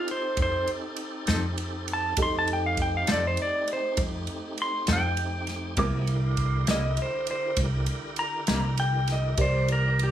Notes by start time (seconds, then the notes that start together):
Already playing: C4 D#4 G4 A4 D#5
0.08 C5, ride
0.37 F2, kick, ride
0.42 C5
0.67 ride
0.96 ride
1.27 F2 F3 C4 D#4 A4, snare, ride
1.58 ride
1.88 ride
1.93 A5
2.17 F2 A3 C4 D#4 G4 A4, kick, ride
2.22 C6
2.39 A5
2.48 ride
2.53 G5
2.66 F5
2.77 kick, ride
2.82 G5
2.97 F5
3.07 F2 F3 C4 D#4 A4, snare, ride
3.12 D5
3.27 C5
3.37 ride
3.42 D5
3.68 ride
3.73 C5
3.97 F2, kick, ride
4.27 ride
4.58 ride
4.62 C6
4.87 F2 F3 C4 D#4 A4, snare, ride
4.93 G5
5.17 ride
5.47 snare, ride
5.77 C2 C3 F3 G3 A#3 B3 E4 G#4 A#4 D#5 D6, kick, ride
6.07 D3 E4 G4 A#4 F5, ride
6.37 kick, ride
6.67 C2 C3 G3 A#3 E4 D#5, snare, ride
6.97 ride
7.02 C5
7.27 ride
7.31 C5
7.57 C2, kick, ride
7.86 ride
8.16 A#5, ride
8.47 C2 C3 G3 A#3 E4, snare, ride
8.77 G5, ride
9.07 snare, ride
9.12 D#5
9.37 C2 E3 G4 A#4 C5 D5, kick, ride
9.68 ride
9.72 A#4
9.99 ride
10.04 G4